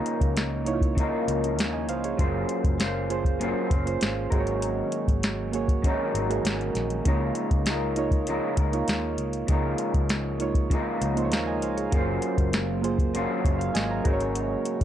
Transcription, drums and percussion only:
0.06 closed hi-hat
0.21 kick, closed hi-hat
0.37 snare, closed hi-hat
0.66 closed hi-hat
0.81 kick, closed hi-hat
0.97 kick, closed hi-hat
1.28 closed hi-hat
1.44 closed hi-hat
1.59 snare, closed hi-hat
1.89 closed hi-hat
2.04 closed hi-hat
2.19 kick, closed hi-hat
2.49 closed hi-hat
2.64 kick, closed hi-hat
2.80 snare, closed hi-hat
3.10 closed hi-hat
3.25 kick, closed hi-hat
3.41 closed hi-hat
3.71 kick, closed hi-hat
3.87 closed hi-hat
4.01 snare, closed hi-hat
4.32 kick, closed hi-hat
4.47 closed hi-hat
4.62 closed hi-hat
4.92 closed hi-hat
5.08 kick, closed hi-hat
5.23 snare, closed hi-hat
5.53 closed hi-hat
5.68 kick, closed hi-hat
5.84 kick, closed hi-hat
6.15 closed hi-hat
6.31 closed hi-hat
6.45 snare, closed hi-hat
6.61 closed hi-hat
6.75 snare, closed hi-hat
6.90 closed hi-hat
7.05 kick, closed hi-hat
7.35 closed hi-hat
7.51 kick, closed hi-hat
7.66 snare, closed hi-hat
7.96 closed hi-hat
8.11 kick, closed hi-hat
8.27 closed hi-hat
8.57 kick, closed hi-hat
8.73 closed hi-hat
8.88 snare, closed hi-hat
9.18 closed hi-hat
9.33 closed hi-hat
9.48 kick, closed hi-hat
9.78 closed hi-hat
9.94 kick, closed hi-hat
10.09 snare, closed hi-hat
10.40 closed hi-hat
10.55 kick, closed hi-hat
10.70 kick, closed hi-hat
11.02 closed hi-hat
11.17 closed hi-hat
11.32 snare, closed hi-hat
11.62 closed hi-hat
11.78 closed hi-hat
11.92 kick, closed hi-hat
12.22 closed hi-hat
12.38 kick, closed hi-hat
12.53 snare, closed hi-hat
12.84 closed hi-hat
12.99 kick, closed hi-hat
13.15 closed hi-hat
13.45 kick, closed hi-hat
13.61 closed hi-hat
13.75 snare, closed hi-hat
14.05 kick, closed hi-hat
14.20 closed hi-hat
14.35 closed hi-hat
14.65 closed hi-hat

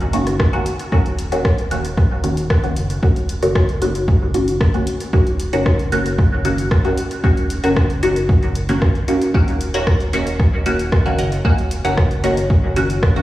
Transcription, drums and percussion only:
0.00 closed hi-hat
0.13 closed hi-hat
0.27 cross-stick, closed hi-hat
0.40 kick, cross-stick
0.53 closed hi-hat
0.66 closed hi-hat
0.79 closed hi-hat
0.92 kick
1.06 closed hi-hat
1.19 closed hi-hat
1.32 closed hi-hat
1.45 kick, cross-stick
1.58 closed hi-hat
1.71 closed hi-hat
1.85 closed hi-hat
1.97 kick, cross-stick
2.24 closed hi-hat
2.37 closed hi-hat
2.50 kick, cross-stick
2.64 closed hi-hat
2.76 closed hi-hat
2.90 closed hi-hat
3.03 kick
3.16 closed hi-hat
3.29 closed hi-hat
3.43 closed hi-hat
3.55 kick, cross-stick
3.69 closed hi-hat
3.82 closed hi-hat
3.95 closed hi-hat
4.08 kick
4.34 closed hi-hat
4.48 closed hi-hat
4.61 kick, cross-stick
4.74 closed hi-hat
4.87 closed hi-hat
5.00 closed hi-hat
5.13 kick
5.27 closed hi-hat
5.40 closed hi-hat
5.53 closed hi-hat
5.66 kick, cross-stick
5.79 closed hi-hat
5.92 closed hi-hat
6.06 closed hi-hat
6.18 kick, cross-stick
6.45 closed hi-hat
6.58 closed hi-hat
6.71 kick, cross-stick
6.85 closed hi-hat
6.97 closed hi-hat
7.11 closed hi-hat
7.24 kick
7.37 closed hi-hat
7.50 closed hi-hat
7.64 closed hi-hat
7.76 kick, cross-stick
7.90 closed hi-hat
8.03 closed hi-hat
8.16 closed hi-hat
8.29 kick
8.43 closed hi-hat
8.55 closed hi-hat
8.69 closed hi-hat
8.82 kick, cross-stick
8.95 closed hi-hat
9.08 closed hi-hat
9.22 closed hi-hat
9.34 kick
9.48 closed hi-hat
9.61 closed hi-hat
9.74 closed hi-hat
9.87 kick, cross-stick
10.00 closed hi-hat
10.13 closed hi-hat
10.27 closed hi-hat
10.40 kick, cross-stick
10.66 closed hi-hat
10.79 closed hi-hat
10.92 kick, cross-stick
11.06 closed hi-hat
11.19 closed hi-hat
11.32 closed hi-hat
11.45 kick
11.58 closed hi-hat
11.71 closed hi-hat
11.85 closed hi-hat
11.97 kick, cross-stick
12.11 closed hi-hat
12.24 closed hi-hat
12.37 closed hi-hat
12.50 kick
12.76 closed hi-hat
12.90 closed hi-hat
13.03 kick, cross-stick
13.16 closed hi-hat

